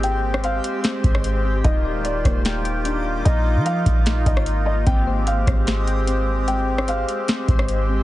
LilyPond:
<<
  \new Staff \with { instrumentName = "Felt piano" } { \time 4/4 \key aes \lydian \tempo 4 = 149 g''4 f''4 r2 | ees''4 d''4 r2 | ees''4 f''4. ees''4 ees''8 | g''4 f''4 r2 |
g''4 f''4 r2 | }
  \new Staff \with { instrumentName = "Synth keys" } { \time 4/4 \key aes \lydian <c' c'' g''>4 c''4 c'8 c''4 c'8 | ees'8 d''4 bes8 g''8 d'''8 d'4 | r4 ees''4 ees'8 ees''4 ees'8 | c'8 c''4 c'8 c''8 g''8 c'4~ |
c'4 c''4 c'8 c''4 c'8 | }
  \new Staff \with { instrumentName = "Synth texture" } { \time 4/4 \key aes \lydian <aes g' c''>1 | <g ees' d'''>1 | <bes f' ees''>1 | <aes g' c''>1~ |
<aes g' c''>1 | }
  \new Staff \with { instrumentName = "Accordion" } { \time 4/4 \key aes \lydian << { g'1~ | g'1 | f'1 | g'1~ |
g'1 | } \\ { <aes c'>1 | <ees f'>1 | ees'1 | <aes c'>1~ |
<aes c'>1 | } >> }
  \new Staff \with { instrumentName = "Accordion" } { \time 4/4 \key aes \lydian r1 | bes1~ | bes1 | r1 |
r1 | }
  \new Staff \with { instrumentName = "808-style bass" } { \clef bass \time 4/4 \key aes \lydian aes,,4. r4 aes,,4. | ees,,8. d,,16. ees,,16. ees,,2~ ees,,8 | bes,,8. f8. bes,,4 aes,,4. | aes,,4. aes,,2~ aes,,8~ |
aes,,4. r4 aes,,4. | }
  \new DrumStaff \with { instrumentName = "Drums" } \drummode { \time 4/4 hh8. ss16 hh8 hh8 <hh sn>8 <hh bd>16 ss16 hh4 | <hh bd>4 hh8 <hh bd ss>8 <hh sn>8 hh8 hh4 | hh4 hh8 <hh bd>8 <hh sn>8 <hh bd>16 ss16 hh4 | <hh bd>4 hh8 <hh bd ss>8 <hh sn>8 hh8 hh4 |
hh8. ss16 hh8 hh8 <hh sn>8 <hh bd>16 ss16 hh4 | }
>>